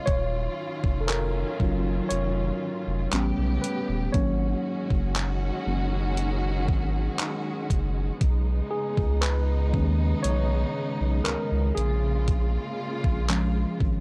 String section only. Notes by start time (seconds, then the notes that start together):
Already playing: F4
0.08 D#3 F#3 C#4
3.13 C#3 A3 B3 G4
4.15 D#3 G#3 C#4 F#4
8.21 C#3 B3 D#4
11.77 G#3 A#3 F4